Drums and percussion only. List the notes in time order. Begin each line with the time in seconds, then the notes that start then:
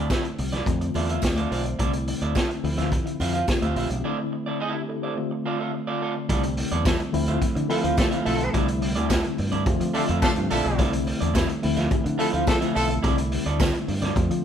0.10 kick, snare, closed hi-hat, tambourine, high conga
0.24 closed hi-hat
0.38 open hi-hat
0.52 snare, closed hi-hat, low conga
0.66 kick, closed hi-hat, muted conga
0.81 closed hi-hat
0.94 open hi-hat, muted conga
1.09 closed hi-hat
1.22 kick, snare, closed hi-hat, tambourine, high conga
1.37 closed hi-hat, high conga
1.52 open hi-hat
1.66 closed hi-hat
1.79 kick, closed hi-hat, muted conga
1.93 closed hi-hat
2.07 open hi-hat
2.22 closed hi-hat
2.35 kick, snare, closed hi-hat, tambourine, high conga
2.51 closed hi-hat
2.64 open hi-hat
2.77 snare, closed hi-hat, low conga
2.92 kick, closed hi-hat, muted conga
3.07 closed hi-hat
3.20 open hi-hat, muted conga, low conga
3.35 closed hi-hat
3.48 kick, snare, closed hi-hat, tambourine, high conga
3.62 closed hi-hat, high conga
3.76 open hi-hat
3.90 closed hi-hat
6.29 kick, closed hi-hat, muted conga
6.43 closed hi-hat
6.57 open hi-hat
6.72 closed hi-hat
6.85 kick, snare, closed hi-hat, tambourine, high conga
7.00 closed hi-hat
7.14 open hi-hat
7.27 closed hi-hat, low conga
7.42 kick, closed hi-hat, muted conga
7.56 closed hi-hat
7.70 open hi-hat, muted conga
7.84 closed hi-hat
7.97 kick, snare, closed hi-hat, tambourine, high conga
8.12 closed hi-hat, high conga
8.26 open hi-hat
8.40 closed hi-hat
8.54 kick, closed hi-hat, muted conga
8.68 closed hi-hat
8.82 open hi-hat
8.96 closed hi-hat
9.10 kick, snare, closed hi-hat, tambourine, high conga
9.24 closed hi-hat
9.38 open hi-hat
9.52 closed hi-hat, low conga
9.66 kick, closed hi-hat, muted conga
9.81 closed hi-hat
9.94 open hi-hat, muted conga
10.08 closed hi-hat
10.22 kick, snare, closed hi-hat, tambourine, high conga
10.36 closed hi-hat, high conga
10.50 open hi-hat
10.65 closed hi-hat
10.79 kick, closed hi-hat, muted conga
10.93 closed hi-hat
11.07 open hi-hat
11.21 closed hi-hat
11.35 kick, snare, closed hi-hat, tambourine, high conga
11.49 closed hi-hat
11.63 open hi-hat
11.77 snare, closed hi-hat, low conga
11.91 kick, closed hi-hat, muted conga
12.06 closed hi-hat
12.20 open hi-hat
12.34 closed hi-hat
12.47 kick, snare, closed hi-hat, tambourine, high conga
12.62 closed hi-hat, high conga
12.76 open hi-hat
12.90 closed hi-hat
13.04 kick, closed hi-hat, muted conga
13.18 closed hi-hat
13.32 open hi-hat
13.46 closed hi-hat
13.60 kick, snare, closed hi-hat, tambourine, high conga
13.74 closed hi-hat
13.88 open hi-hat
14.02 snare, closed hi-hat, low conga
14.16 kick, closed hi-hat, muted conga
14.31 closed hi-hat